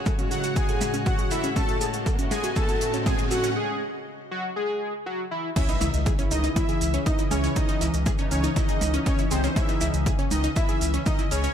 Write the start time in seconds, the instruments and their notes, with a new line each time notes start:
Already playing: ambient pad C#3 F#4 C#5, analog synth pad C#4 F#4 F#5, riser
0.06 synth pluck A4, kick, closed hi-hat, percussion blips, maracas
0.19 analog polysynth A2 G#3 F#4, synth pluck C#4, closed hi-hat, maracas
0.31 analog synth lead F#4, supersaw synth F#5, open hi-hat, maracas
0.44 synth pluck F#4, closed hi-hat, maracas
0.56 synth pluck G#4, analog synth lead G#4, supersaw synth G#5, kick, closed hi-hat, maracas
0.69 synth pluck A4, closed hi-hat, maracas
0.81 open hi-hat, percussion blips, maracas
0.94 synth pluck C#4, closed hi-hat, maracas
1.06 synth pluck F#4, analog synth lead F#4, supersaw synth F#5, kick, closed hi-hat, maracas
1.19 synth pluck G#4, closed hi-hat, maracas
1.31 analog synth lead E4, synth pluck A4, supersaw synth E5, open hi-hat, maracas
1.44 synth pluck C#4, closed hi-hat, maracas
1.56 synth pluck C#4, analog synth lead A4, ambient pad D#5, supersaw synth A5, kick, closed hi-hat, percussion blips, maracas
1.69 synth pluck F#4, closed hi-hat, maracas
1.81 analog polysynth A2 G#3 F#4, synth pluck G#4, open hi-hat, maracas
1.93 closed hi-hat, maracas
2.06 synth pluck A4, kick, closed hi-hat, maracas
2.19 analog polysynth A2 A3 F#4, synth pluck C#4, closed hi-hat, maracas
2.31 analog synth lead G#4, supersaw synth G#5, open hi-hat, percussion blips, maracas
2.44 synth pluck F#4, closed hi-hat, maracas
2.56 synth pluck G#4, analog synth lead A4, supersaw synth A5, kick, closed hi-hat, maracas
2.69 synth pluck A4, closed hi-hat, maracas
2.81 open hi-hat, maracas
2.94 synth pluck C#4, closed hi-hat, maracas
3.06 synth pluck F#4, analog synth lead G#4, supersaw synth G#5, kick, closed hi-hat, percussion blips, maracas
3.18 synth pluck G#4, closed hi-hat, maracas
3.31 analog synth lead F#4, synth pluck A4, supersaw synth F#5, open hi-hat, maracas
3.44 synth pluck C#4, closed hi-hat, maracas
3.56 analog synth lead G#4
4.31 analog synth lead F#4
4.56 analog synth lead G#4
5.06 analog synth lead F#4
5.31 analog synth lead E4
5.56 ambient pad C#3 E3 C#4, synth pluck C#4 C#5, analog synth lead E4, supersaw synth E5, kick, closed hi-hat, crash, impact, maracas
5.69 synth pluck D#4 D#5, closed hi-hat, maracas
5.81 analog synth bass C#2, analog polysynth C#3 E3 D#4, synth pluck E4 E5, open hi-hat, percussion blips, maracas
5.94 analog synth bass C#2, closed hi-hat, maracas
6.06 synth pluck G#4 G#5, kick, closed hi-hat, maracas
6.19 analog polysynth C#3 E3 E4, synth pluck C#4 C#5, closed hi-hat, maracas
6.31 analog synth bass C#2, analog synth lead D#4, supersaw synth D#5, open hi-hat, maracas
6.44 synth pluck D#4 D#5, closed hi-hat, maracas
6.56 analog synth lead E4, synth pluck E4 E5, supersaw synth E5, kick, closed hi-hat, percussion blips, maracas
6.69 synth pluck G#4 G#5, closed hi-hat, maracas
6.81 analog synth bass C#2, open hi-hat, maracas
6.94 synth pluck C#4 C#5, closed hi-hat, maracas
7.06 synth pluck D#4 D#5, analog synth lead D#4, supersaw synth D#5, kick, closed hi-hat, maracas
7.18 synth pluck E4 E5, closed hi-hat, maracas
7.31 analog synth bass C#2, analog synth lead C#4, synth pluck G#4 G#5, supersaw synth C#5, open hi-hat, percussion blips, maracas
7.44 synth pluck C#4 C#5, closed hi-hat, maracas
7.56 synth pluck C#4 C#5, analog synth lead D#4, supersaw synth D#5, kick, closed hi-hat, maracas
7.69 synth pluck D#4 D#5, closed hi-hat, maracas
7.81 analog synth bass C#2, analog polysynth C#3 E3 D#4, synth pluck E4 E5, open hi-hat, maracas
7.94 analog synth bass C#2, closed hi-hat, maracas
8.06 synth pluck G#4 G#5, kick, closed hi-hat, percussion blips, maracas
8.18 analog polysynth C#3 E3 D#4, synth pluck C#4 C#5, closed hi-hat, maracas
8.31 analog synth bass C#2, analog synth lead C#4, supersaw synth C#5, open hi-hat, maracas
8.44 synth pluck D#4 D#5, closed hi-hat, maracas
8.56 analog synth lead D#4, synth pluck E4 E5, supersaw synth D#5, kick, closed hi-hat, maracas
8.69 synth pluck G#4 G#5, closed hi-hat, maracas
8.81 analog synth bass C#2, open hi-hat, percussion blips, maracas
8.94 synth pluck C#4 C#5, closed hi-hat, maracas
9.06 analog synth lead C#4, synth pluck D#4 D#5, supersaw synth C#5, kick, closed hi-hat, maracas
9.19 synth pluck E4 E5, closed hi-hat, maracas
9.31 analog synth bass C#2, analog synth lead C4, synth pluck G#4 G#5, supersaw synth C5, open hi-hat, maracas
9.44 synth pluck C#4 C#5, closed hi-hat, maracas
9.56 synth pluck C#4 C#5, analog synth lead E4, supersaw synth E5, kick, closed hi-hat, percussion blips, maracas
9.69 synth pluck D#4 D#5, closed hi-hat, maracas
9.81 analog synth bass C#2, analog polysynth C#3 E3 D#4, synth pluck E4 E5, open hi-hat, maracas
9.94 analog synth bass C#2, closed hi-hat, maracas
10.06 synth pluck G#4 G#5, kick, closed hi-hat, maracas
10.19 synth pluck C#4 C#5, closed hi-hat, maracas
10.31 analog synth bass C#2, analog synth lead D#4, supersaw synth D#5, open hi-hat, percussion blips, maracas
10.44 synth pluck D#4 D#5, closed hi-hat, maracas
10.56 synth pluck E4 E5, analog synth lead E4, supersaw synth E5, kick, closed hi-hat, maracas
10.69 synth pluck G#4 G#5, closed hi-hat, maracas
10.81 analog synth bass C#2, open hi-hat, maracas
10.94 synth pluck C#4 C#5, closed hi-hat, maracas
11.06 synth pluck D#4 D#5, analog synth lead D#4, supersaw synth D#5, kick, closed hi-hat, percussion blips, maracas
11.19 synth pluck E4 E5, closed hi-hat, maracas
11.31 analog synth bass C#2, analog synth lead C#4, synth pluck G#4 G#5, supersaw synth C#5, open hi-hat, maracas
11.44 synth pluck C#4 C#5, closed hi-hat, maracas